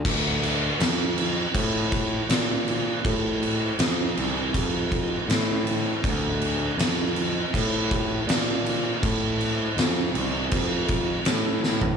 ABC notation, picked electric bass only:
X:1
M:4/4
L:1/8
Q:1/4=80
K:Dm
V:1 name="Picked electric bass" clef=bass
D,,2 F,,2 A,,2 B,,2 | A,,2 F,, C,, F,,2 A,,2 | D,,2 F,,2 A,,2 B,,2 | A,,2 F,, C,, F,,2 A,,2 |]